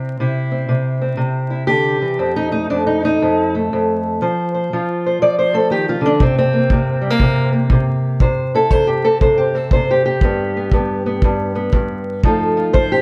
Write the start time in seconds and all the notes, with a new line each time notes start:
Already playing: C3 C4
0.20 C3 E4
0.52 C4
0.69 C3
1.01 C4
1.17 C3
1.50 E4
1.67 D3 G4
2.02 E3
2.19 F2 C4
2.36 D#4
2.51 A3 D#4
2.70 F2 D4
2.87 D#4
3.03 A3 D#4
3.22 F2
3.55 A3
3.73 F2
4.22 F3 C5
4.54 C5
4.73 F3 F4
5.06 C5
5.22 F3 D5
5.39 C5
5.53 A3 A4
5.70 D#3 G4
5.89 F4
6.01 D3
6.06 D4
6.20 C3 C4, kick
6.38 C4
6.53 A#3
6.70 C3 A#3, kick
7.01 G3
7.10 A#3
7.20 C3, kick
7.53 A#3
7.70 C3, kick
8.20 C3 C5, kick
8.54 E4 A4
8.71 C3 C5, kick
8.87 G4
9.04 C4 A4
9.21 C3 C5, kick
9.38 G4
9.54 C4 A4
9.71 C3 C5, kick
9.91 G4
10.05 G4
10.21 G2 B3, kick
10.57 B3
10.71 G2 B3, kick
11.06 B3
11.22 G2, kick
11.55 B3
11.73 G2, kick
12.23 F3 A3 D#4 F4 A4, kick
12.57 F4
12.73 F3 C5, kick
12.92 G4